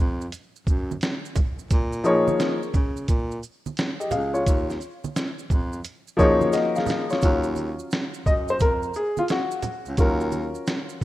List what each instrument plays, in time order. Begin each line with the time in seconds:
0.00 baritone saxophone F2
0.21 maracas
0.32 closed hi-hat, maracas
0.56 maracas
0.67 baritone saxophone F#2, kick, shaker, maracas
0.91 high conga, maracas
1.01 snare, closed hi-hat, maracas
1.25 maracas
1.36 kick, closed hi-hat, low conga, maracas, shaker
1.59 maracas
1.71 baritone saxophone A#2, kick, closed hi-hat, maracas
1.93 maracas
2.04 upright piano F3 A#3 D#4 G#4 C#5, shaker, maracas
2.28 high conga, maracas
2.40 snare, closed hi-hat, maracas
2.63 maracas
2.74 baritone saxophone C#3, kick, low conga, shaker, maracas
2.97 maracas
3.08 baritone saxophone A#2, kick, closed hi-hat, maracas
3.31 maracas
3.43 shaker, maracas
3.66 high conga, maracas
3.77 snare, closed hi-hat, maracas
4.00 upright piano G4 D#5, maracas
4.11 baritone saxophone C#2, upright piano G#4 F5, closed hi-hat, low conga, maracas, shaker
4.34 upright piano F4 C#5, maracas
4.46 baritone saxophone D#2, kick, closed hi-hat, maracas
4.70 snare, maracas
4.81 shaker, maracas
5.04 high conga, maracas
5.16 snare, closed hi-hat, maracas
5.39 maracas
5.50 baritone saxophone F2, kick, low conga, shaker, maracas
5.73 maracas
5.84 closed hi-hat, maracas
6.08 maracas
6.17 baritone saxophone F#2, upright piano F3 A#3 D#4 G#4 C#5, kick, maracas, shaker
6.41 high conga, maracas
6.53 upright piano F#4 D#5, snare, closed hi-hat, maracas
6.76 upright piano G#4 F5, snare, maracas
6.86 snare, low conga, maracas, shaker
7.10 upright piano F4 C#5, snare, maracas
7.22 baritone saxophone D#2, upright piano F#3 C#4 F4, kick, closed hi-hat, maracas
7.44 maracas
7.56 high conga, maracas, shaker
7.79 maracas
7.91 snare, closed hi-hat, maracas
8.14 maracas
8.26 baritone saxophone F#2, upright piano D#5, kick, low conga, maracas, shaker
8.48 upright piano C5, maracas
8.60 baritone saxophone F2, upright piano A#4, kick, closed hi-hat, high conga, maracas
8.83 maracas
8.94 upright piano G#4, maracas, shaker
9.17 upright piano F4, high conga, maracas
9.28 upright piano F#4, snare, closed hi-hat, maracas
9.51 maracas
9.62 closed hi-hat, low conga, shaker, maracas
9.86 baritone saxophone C#2, maracas
9.97 baritone saxophone D#2, upright piano F#3 C#4 F4 A#4, kick, closed hi-hat, maracas
10.20 maracas
10.32 high conga, shaker, maracas
10.55 maracas
10.67 snare, closed hi-hat, maracas
10.89 maracas